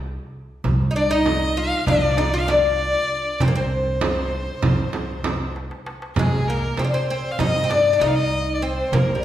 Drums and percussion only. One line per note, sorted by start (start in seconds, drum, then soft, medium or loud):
0.64 frame drum medium
0.64 darbuka dum medium
0.81 darbuka ka soft
1.26 darbuka tek medium
1.26 frame drum medium
1.87 darbuka dum medium
1.87 frame drum medium
2.17 darbuka tek medium
2.17 frame drum medium
2.48 darbuka tek medium
2.48 frame drum medium
3.40 darbuka dum loud
3.40 frame drum medium
3.56 darbuka ka soft
4.01 darbuka tek medium
4.01 frame drum medium
4.48 darbuka ka soft
4.62 frame drum medium
4.62 darbuka dum medium
4.93 darbuka tek medium
4.93 frame drum medium
5.24 darbuka tek medium
5.24 frame drum medium
5.56 darbuka tek soft
5.71 darbuka ka medium
5.86 darbuka tek medium
6.02 darbuka ka medium
6.16 frame drum medium
6.16 darbuka dum medium
6.77 darbuka tek medium
6.77 frame drum medium
7.39 frame drum medium
7.39 darbuka dum medium
7.70 darbuka tek medium
7.70 frame drum medium
8.00 darbuka tek medium
8.00 frame drum medium
8.32 darbuka ka soft
8.93 frame drum medium
8.93 darbuka dum medium